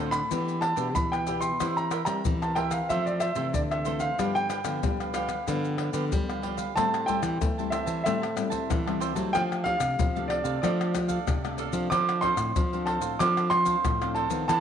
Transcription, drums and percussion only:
0.12 pandeiro medium
0.12 tamborim medium
0.12 maracas medium
0.31 pandeiro medium
0.31 maracas medium
0.31 surdo medium
0.48 pandeiro soft
0.48 maracas soft
0.62 pandeiro medium
0.62 tamborim medium
0.77 pandeiro medium
0.77 maracas medium
0.96 pandeiro medium
0.96 maracas medium
0.96 surdo medium
1.13 pandeiro soft
1.13 tamborim medium
1.13 maracas soft
1.27 pandeiro medium
1.27 maracas medium
1.42 pandeiro medium
1.42 maracas medium
1.60 pandeiro medium
1.60 tamborim medium
1.60 maracas medium
1.60 surdo medium
1.77 pandeiro soft
1.77 maracas soft
1.91 pandeiro medium
1.91 tamborim medium
1.91 maracas medium
2.06 pandeiro medium
2.06 tamborim medium
2.06 maracas medium
2.25 pandeiro medium
2.25 maracas medium
2.25 surdo loud
2.42 pandeiro soft
2.42 tamborim medium
2.42 maracas soft
2.56 pandeiro medium
2.56 tamborim medium
2.71 pandeiro medium
2.71 tamborim medium
2.71 maracas medium
2.90 pandeiro medium
2.90 maracas medium
2.90 surdo medium
3.07 pandeiro soft
3.07 maracas soft
3.20 pandeiro medium
3.20 tamborim medium
3.20 maracas medium
3.35 pandeiro medium
3.35 maracas medium
3.54 pandeiro medium
3.54 maracas medium
3.54 surdo medium
3.71 pandeiro soft
3.71 tamborim medium
3.71 maracas soft
3.85 pandeiro medium
3.85 maracas medium
4.00 pandeiro medium
4.00 maracas medium
4.19 pandeiro medium
4.19 tamborim medium
4.19 maracas medium
4.19 surdo medium
4.36 pandeiro soft
4.36 maracas soft
4.50 pandeiro medium
4.50 tamborim medium
4.50 maracas medium
4.65 pandeiro medium
4.65 tamborim medium
4.65 maracas medium
4.83 pandeiro medium
4.83 maracas medium
4.83 surdo loud
5.00 pandeiro soft
5.00 tamborim medium
5.00 maracas soft
5.14 pandeiro medium
5.14 tamborim medium
5.14 maracas medium
5.29 pandeiro medium
5.29 tamborim medium
5.29 maracas medium
5.48 pandeiro medium
5.48 maracas medium
5.48 surdo medium
5.65 pandeiro soft
5.65 maracas soft
5.78 pandeiro medium
5.78 tamborim medium
5.93 pandeiro medium
5.93 maracas medium
6.12 pandeiro medium
6.12 maracas medium
6.12 surdo loud
6.30 pandeiro soft
6.30 tamborim medium
6.30 maracas soft
6.43 pandeiro medium
6.58 pandeiro medium
6.58 maracas medium
6.77 pandeiro medium
6.77 tamborim medium
6.77 maracas medium
6.77 surdo medium
6.94 pandeiro soft
6.94 tamborim medium
6.94 maracas soft
7.08 pandeiro medium
7.08 maracas medium
7.08 surdo soft
7.23 pandeiro medium
7.23 tamborim medium
7.23 maracas medium
7.23 surdo soft
7.41 pandeiro medium
7.41 maracas medium
7.41 surdo loud
7.59 pandeiro soft
7.59 maracas soft
7.72 pandeiro medium
7.72 tamborim medium
7.72 maracas medium
7.87 pandeiro medium
7.87 maracas medium
8.06 pandeiro medium
8.06 tamborim medium
8.06 maracas medium
8.06 surdo medium
8.23 pandeiro soft
8.23 tamborim medium
8.23 maracas soft
8.37 pandeiro medium
8.37 tamborim medium
8.37 maracas medium
8.52 pandeiro medium
8.52 maracas medium
8.52 surdo soft
8.70 pandeiro medium
8.70 tamborim medium
8.70 maracas medium
8.70 surdo loud
8.88 pandeiro soft
8.88 tamborim medium
8.88 maracas soft
9.01 pandeiro medium
9.01 maracas medium
9.16 pandeiro medium
9.16 maracas medium
9.16 surdo soft
9.35 pandeiro medium
9.35 tamborim medium
9.35 maracas medium
9.35 surdo medium
9.52 pandeiro soft
9.52 tamborim medium
9.52 maracas soft
9.65 pandeiro medium
9.65 surdo soft
9.80 pandeiro medium
9.80 tamborim medium
9.80 maracas medium
9.80 surdo soft
9.99 pandeiro medium
9.99 maracas medium
9.99 surdo loud
10.16 pandeiro soft
10.16 maracas soft
10.30 pandeiro medium
10.30 tamborim medium
10.45 pandeiro medium
10.45 maracas medium
10.64 pandeiro medium
10.64 tamborim medium
10.64 maracas medium
10.64 surdo medium
10.81 pandeiro soft
10.81 tamborim medium
10.81 maracas soft
10.95 pandeiro medium
10.95 tamborim medium
10.95 maracas medium
10.95 surdo soft
11.09 pandeiro medium
11.09 maracas medium
11.09 surdo soft
11.27 pandeiro medium
11.27 tamborim medium
11.27 maracas medium
11.27 surdo loud
11.45 pandeiro soft
11.45 tamborim medium
11.45 maracas soft
11.58 pandeiro medium
11.58 maracas medium
11.73 pandeiro medium
11.73 maracas medium
11.73 surdo soft
11.92 pandeiro medium
11.92 tamborim medium
11.92 maracas medium
11.92 surdo medium
12.09 pandeiro soft
12.09 tamborim medium
12.09 maracas soft
12.22 pandeiro medium
12.22 surdo soft
12.37 pandeiro medium
12.37 tamborim medium
12.37 maracas medium
12.37 surdo soft
12.56 pandeiro medium
12.56 maracas medium
12.56 surdo loud
12.73 pandeiro soft
12.73 maracas soft
12.87 pandeiro medium
12.87 tamborim medium
13.02 pandeiro medium
13.02 maracas medium
13.20 pandeiro medium
13.20 tamborim medium
13.20 maracas medium
13.20 surdo medium
13.37 pandeiro soft
13.37 tamborim medium
13.37 maracas soft
13.51 pandeiro medium
13.51 tamborim medium
13.66 pandeiro medium
13.66 maracas medium
13.66 surdo soft
13.85 pandeiro medium
13.85 tamborim medium
13.85 maracas medium
13.85 surdo loud
14.02 pandeiro soft
14.02 tamborim medium
14.02 maracas soft
14.15 pandeiro medium
14.30 pandeiro medium
14.30 maracas medium
14.30 surdo soft
14.49 pandeiro medium
14.49 tamborim medium
14.49 maracas medium
14.49 surdo medium

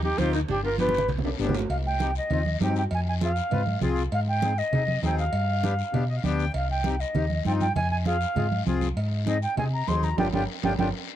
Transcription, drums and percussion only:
0.03 high conga medium
0.18 high conga medium
0.18 high timbale medium
0.18 short guiro medium
0.33 high timbale medium
0.33 short guiro medium
0.49 low conga medium
0.49 high timbale medium
0.49 long guiro medium
0.63 high conga soft
0.78 high conga medium
0.78 high timbale medium
0.78 short guiro medium
0.89 high conga medium
0.94 high timbale medium
0.94 short guiro medium
0.98 low conga medium
1.08 low conga medium
1.08 high timbale medium
1.08 long guiro medium
1.18 low conga medium
1.25 high timbale medium
1.39 short guiro medium
1.44 low timbale medium
1.49 low conga loud
1.54 low timbale medium
1.54 short guiro medium
1.59 low conga medium
1.70 cowbell loud
1.70 long guiro medium
1.84 high conga soft
1.99 high conga medium
1.99 short guiro medium
2.15 short guiro medium
2.30 cowbell medium
2.30 high conga soft
2.30 low conga medium
2.30 long guiro medium
2.46 high conga medium
2.61 high conga medium
2.61 low timbale medium
2.61 short guiro medium
2.76 short guiro medium
2.91 cowbell loud
2.91 long guiro medium
3.06 high conga soft
3.21 high conga loud
3.21 short guiro medium
3.36 short guiro medium
3.51 cowbell medium
3.51 high conga soft
3.51 low conga medium
3.51 long guiro medium
3.67 high conga medium
3.81 high conga medium
3.81 low conga medium
3.81 short guiro medium
3.96 short guiro medium
4.12 cowbell loud
4.12 long guiro medium
4.27 high conga soft
4.42 high conga medium
4.42 short guiro medium
4.58 short guiro medium
4.73 cowbell medium
4.73 high conga soft
4.73 low conga medium
4.73 long guiro medium
4.88 high conga medium
5.03 high conga medium
5.03 low timbale medium
5.03 short guiro medium
5.18 short guiro medium
5.33 cowbell loud
5.33 long guiro medium
5.49 high conga soft
5.64 high conga loud
5.64 short guiro medium
5.79 short guiro medium
5.94 cowbell medium
5.94 high conga soft
5.94 low conga medium
5.94 long guiro medium
6.24 high conga medium
6.24 short guiro medium
6.39 short guiro medium
6.54 cowbell loud
6.54 long guiro medium
6.69 high conga soft
6.84 high conga medium
6.84 short guiro medium
7.00 short guiro medium
7.15 cowbell medium
7.15 high conga soft
7.15 low conga medium
7.15 long guiro medium
7.30 high conga medium
7.45 high conga medium
7.45 short guiro medium
7.60 high conga medium
7.60 short guiro medium
7.76 cowbell loud
7.76 low conga medium
7.76 long guiro medium
7.91 high conga soft
8.06 high conga medium
8.06 short guiro medium
8.21 short guiro medium
8.36 cowbell medium
8.36 high conga soft
8.36 low conga medium
8.36 long guiro medium
8.52 high conga medium
8.66 high conga medium
8.66 short guiro medium
8.81 high conga medium
8.81 short guiro medium
8.97 cowbell loud
8.97 long guiro medium
9.12 high conga soft
9.27 high conga medium
9.27 short guiro medium
9.42 short guiro medium
9.57 cowbell medium
9.57 high conga soft
9.57 low conga medium
9.57 long guiro medium
9.88 high conga medium
9.88 low timbale medium
9.88 short guiro medium
10.03 high conga medium
10.03 short guiro medium
10.18 high conga loud
10.18 high timbale loud
10.18 long guiro loud
10.33 high conga medium
10.33 high timbale medium
10.33 long guiro loud
10.63 high conga loud
10.63 high timbale loud
10.63 long guiro loud
10.79 high conga medium
10.79 high timbale loud
10.79 long guiro medium

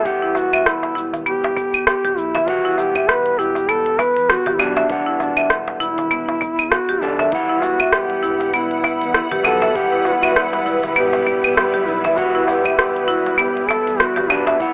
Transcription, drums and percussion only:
0.05 kick loud
0.05 closed hi-hat medium
0.05 shaker soft
0.35 darbuka ka medium
0.35 shaker medium
0.53 closed hi-hat soft
0.53 claves medium
0.53 shaker soft
0.66 cross-stick loud
0.66 closed hi-hat medium
0.66 shaker soft
0.83 closed hi-hat soft
0.83 darbuka tek medium
0.97 shaker medium
1.13 closed hi-hat soft
1.13 darbuka ka medium
1.13 darbuka dum medium
1.13 shaker soft
1.27 closed hi-hat medium
1.27 shaker soft
1.44 closed hi-hat soft
1.44 darbuka tek medium
1.57 kick loud
1.57 shaker medium
1.74 closed hi-hat soft
1.74 claves medium
1.74 shaker soft
1.87 cross-stick loud
1.87 closed hi-hat medium
1.87 darbuka tek medium
1.87 shaker soft
2.18 shaker medium
2.35 closed hi-hat soft
2.35 darbuka tek medium
2.35 darbuka dum loud
2.35 shaker soft
2.48 kick loud
2.48 closed hi-hat medium
2.48 shaker soft
2.78 darbuka ka medium
2.78 shaker medium
2.95 kick loud
2.95 closed hi-hat soft
2.95 claves medium
2.95 shaker soft
3.09 cross-stick loud
3.09 closed hi-hat medium
3.09 shaker soft
3.26 closed hi-hat soft
3.40 shaker medium
3.55 closed hi-hat soft
3.55 darbuka ka medium
3.55 shaker soft
3.69 closed hi-hat medium
3.69 shaker soft
3.86 closed hi-hat soft
3.98 kick medium
3.98 darbuka ka soft
3.98 darbuka tek medium
3.98 shaker medium
4.17 closed hi-hat soft
4.17 shaker soft
4.29 cross-stick loud
4.29 closed hi-hat medium
4.29 shaker soft
4.47 darbuka ka medium
4.47 darbuka dum medium
4.59 darbuka tek medium
4.59 claves medium
4.59 shaker medium
4.77 closed hi-hat soft
4.77 darbuka tek medium
4.77 shaker soft
4.90 kick loud
4.90 closed hi-hat medium
4.90 shaker soft
5.20 darbuka ka medium
5.20 shaker medium
5.37 closed hi-hat soft
5.37 claves medium
5.37 shaker soft
5.50 cross-stick loud
5.50 closed hi-hat medium
5.50 shaker soft
5.68 closed hi-hat soft
5.68 darbuka tek medium
5.81 shaker medium
5.98 closed hi-hat soft
5.98 darbuka ka medium
5.98 darbuka dum medium
5.98 shaker soft
6.11 closed hi-hat medium
6.11 shaker soft
6.28 closed hi-hat soft
6.28 darbuka tek medium
6.42 kick loud
6.42 shaker medium
6.59 closed hi-hat soft
6.59 claves medium
6.59 shaker soft
6.72 cross-stick loud
6.72 closed hi-hat medium
6.72 darbuka tek medium
6.72 shaker soft
7.03 shaker medium
7.19 closed hi-hat soft
7.19 darbuka tek medium
7.19 darbuka dum loud
7.19 shaker soft
7.32 kick loud
7.32 closed hi-hat medium
7.32 shaker soft
7.62 darbuka ka medium
7.62 shaker medium
7.80 kick loud
7.80 closed hi-hat soft
7.80 claves medium
7.80 shaker soft
7.93 cross-stick loud
7.93 closed hi-hat soft
7.93 shaker soft
8.10 closed hi-hat soft
8.24 shaker medium
8.40 closed hi-hat soft
8.40 darbuka ka soft
8.40 shaker soft
8.54 closed hi-hat medium
8.54 shaker soft
8.71 closed hi-hat soft
8.83 kick medium
8.83 darbuka ka soft
8.83 darbuka tek medium
8.83 shaker medium
9.01 closed hi-hat soft
9.01 shaker soft
9.14 cross-stick loud
9.14 closed hi-hat medium
9.14 shaker soft
9.32 darbuka ka medium
9.32 darbuka dum medium
9.44 darbuka tek medium
9.44 claves medium
9.44 shaker medium
9.62 closed hi-hat soft
9.62 darbuka tek medium
9.62 shaker soft
9.75 kick loud
9.75 closed hi-hat medium
9.75 shaker soft
10.05 darbuka ka medium
10.05 shaker medium
10.23 closed hi-hat soft
10.23 claves medium
10.23 shaker soft
10.36 cross-stick medium
10.36 closed hi-hat medium
10.36 shaker soft
10.53 closed hi-hat soft
10.53 darbuka tek medium
10.67 shaker medium
10.83 closed hi-hat soft
10.83 darbuka ka medium
10.83 darbuka dum medium
10.83 shaker soft
10.96 closed hi-hat medium
10.96 shaker soft
11.13 closed hi-hat soft
11.13 darbuka tek medium
11.27 kick loud
11.27 shaker medium
11.44 closed hi-hat soft
11.44 claves medium
11.44 shaker soft
11.57 cross-stick loud
11.57 closed hi-hat medium
11.57 darbuka tek medium
11.57 shaker soft
11.88 shaker medium
12.05 closed hi-hat soft
12.05 darbuka tek medium
12.05 darbuka dum medium
12.05 shaker soft
12.17 kick loud
12.17 closed hi-hat medium
12.17 shaker soft
12.48 darbuka ka medium
12.48 shaker medium
12.65 kick loud
12.65 closed hi-hat soft
12.65 claves medium
12.65 shaker soft
12.79 cross-stick loud
12.79 closed hi-hat medium
12.79 shaker soft
12.96 closed hi-hat soft
13.10 shaker medium
13.26 closed hi-hat soft
13.26 darbuka ka medium
13.26 shaker soft
13.39 closed hi-hat medium
13.39 shaker soft
13.57 closed hi-hat soft
13.69 kick medium
13.69 darbuka ka soft
13.69 darbuka tek medium
13.69 shaker medium
13.87 closed hi-hat soft
13.87 shaker soft
14.00 cross-stick loud
14.00 closed hi-hat medium
14.00 shaker soft
14.17 darbuka ka medium
14.17 darbuka dum medium
14.30 darbuka tek medium
14.30 claves medium
14.30 shaker medium
14.47 closed hi-hat soft
14.47 darbuka tek medium
14.47 shaker soft
14.60 kick loud
14.60 closed hi-hat medium
14.60 shaker soft

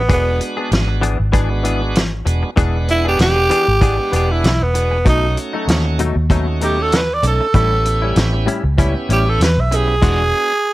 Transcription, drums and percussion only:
0.10 kick loud
0.10 closed hi-hat medium
0.41 closed hi-hat medium
0.72 snare loud
0.72 closed hi-hat medium
1.03 closed hi-hat medium
1.33 kick medium
1.33 closed hi-hat medium
1.65 closed hi-hat medium
1.95 snare loud
1.95 closed hi-hat medium
2.27 closed hi-hat medium
2.57 kick loud
2.57 closed hi-hat medium
2.88 closed hi-hat medium
3.19 snare medium
3.19 closed hi-hat medium
3.51 closed hi-hat medium
3.82 kick medium
3.82 closed hi-hat medium
4.13 closed hi-hat medium
4.44 snare loud
4.44 closed hi-hat medium
4.75 closed hi-hat medium
5.06 kick loud
5.06 closed hi-hat medium
5.37 closed hi-hat medium
5.68 snare loud
5.68 closed hi-hat medium
5.99 closed hi-hat medium
6.30 kick medium
6.30 closed hi-hat medium
6.61 closed hi-hat medium
6.92 snare loud
6.92 closed hi-hat medium
7.23 closed hi-hat medium
7.54 kick loud
7.54 closed hi-hat medium
7.85 closed hi-hat medium
8.16 snare loud
8.16 closed hi-hat medium
8.48 closed hi-hat medium
8.78 kick medium
8.78 closed hi-hat medium
9.10 closed hi-hat medium
9.41 snare loud
9.41 closed hi-hat medium
9.72 closed hi-hat medium
10.02 kick loud
10.02 closed hi-hat medium
10.02 crash medium

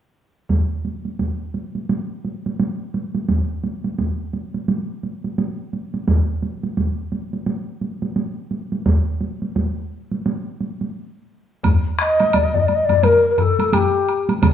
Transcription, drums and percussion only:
0.49 taiko medium
0.49 taiko high soft
0.85 taiko high soft
1.05 taiko high soft
1.19 taiko medium
1.19 taiko high soft
1.54 taiko high soft
1.75 taiko high soft
1.89 taiko high medium
2.25 taiko high soft
2.46 taiko high soft
2.60 taiko high medium
2.94 taiko high soft
3.15 taiko high soft
3.29 taiko medium
3.29 taiko high medium
3.64 taiko high soft
3.84 taiko high soft
3.99 taiko medium
3.99 taiko high medium
4.33 taiko high soft
4.54 taiko high soft
4.68 taiko high medium
5.03 taiko high soft
5.24 taiko high soft
5.38 taiko high medium
5.73 taiko high soft
5.94 taiko high soft
6.08 taiko medium
6.08 taiko high medium
6.42 taiko high soft
6.63 taiko high soft
6.77 taiko medium
6.77 taiko high medium
7.12 taiko high soft
7.33 taiko high soft
7.46 taiko high medium
7.81 taiko high soft
8.02 taiko high soft
8.16 taiko high medium
8.51 taiko high soft
8.72 taiko high soft
8.86 taiko medium
8.86 taiko high medium
9.21 taiko high soft
9.42 taiko high soft
9.55 taiko medium
9.55 taiko high medium
10.11 taiko high soft
10.26 taiko high medium
10.61 taiko high soft
10.81 taiko high soft
11.63 taiko medium
11.63 taiko low-mid medium
11.63 taiko high medium
11.63 high woodblock soft
11.99 taiko rim medium
11.99 high woodblock soft
12.20 taiko high medium
12.20 high woodblock soft
12.33 taiko medium
12.33 taiko high medium
12.33 high woodblock medium
12.54 taiko low-mid medium
12.68 taiko high soft
12.68 high woodblock soft
12.89 taiko low-mid medium
12.89 taiko high soft
12.89 high woodblock soft
13.03 taiko low-mid medium
13.03 taiko high medium
13.03 high woodblock soft
13.38 taiko low-mid loud
13.38 high woodblock soft
13.59 taiko high medium
13.59 high woodblock soft
13.73 taiko low-mid medium
13.73 taiko high medium
13.73 high woodblock medium
14.09 high woodblock soft
14.29 taiko high medium
14.29 high woodblock soft
14.42 taiko medium
14.42 taiko mid medium
14.42 taiko high medium
14.42 high woodblock medium

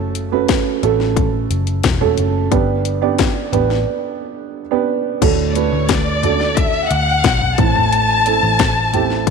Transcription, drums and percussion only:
0.15 closed hi-hat medium
0.48 kick loud
0.48 snare loud
0.48 closed hi-hat medium
0.83 closed hi-hat medium
1.00 snare soft
1.16 kick loud
1.16 closed hi-hat medium
1.51 closed hi-hat medium
1.67 closed hi-hat medium
1.83 kick loud
1.83 snare loud
1.83 closed hi-hat medium
2.01 floor tom medium
2.17 closed hi-hat medium
2.52 kick loud
2.52 closed hi-hat medium
2.85 closed hi-hat medium
3.18 kick loud
3.18 snare loud
3.18 closed hi-hat medium
3.53 closed hi-hat medium
3.53 floor tom medium
3.70 snare soft
5.22 kick loud
5.22 closed hi-hat medium
5.22 crash medium
5.55 closed hi-hat medium
5.89 kick loud
5.89 snare loud
5.89 closed hi-hat medium
6.23 closed hi-hat medium
6.23 floor tom medium
6.40 snare soft
6.57 kick loud
6.57 closed hi-hat medium
6.91 closed hi-hat medium
7.24 kick loud
7.24 snare loud
7.24 closed hi-hat medium
7.41 floor tom medium
7.58 kick loud
7.58 closed hi-hat medium
7.75 floor tom medium
7.93 closed hi-hat medium
8.26 closed hi-hat medium
8.59 kick loud
8.59 snare loud
8.59 closed hi-hat medium
8.93 closed hi-hat medium
8.93 floor tom medium
9.10 snare soft
9.27 kick loud
9.27 closed hi-hat medium

